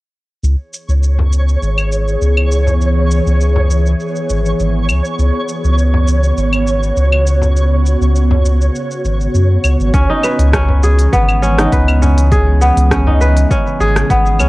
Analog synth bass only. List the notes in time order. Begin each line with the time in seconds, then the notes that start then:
0.43 C#2
0.89 C#2
1.62 G#1
2.22 C#2
3.27 C#2
4.30 G#1
4.60 G#1
4.89 C#2
5.19 C#2
5.64 C#2
6.37 G#1
6.97 C#2
8.01 C#2
9.05 G#1
9.35 F#2
9.64 C#2
9.80 G#1
9.94 C#2
10.39 C#2
11.13 G#1
11.72 C#2
12.77 C#2
13.80 G#1
14.10 G#1
14.39 C#2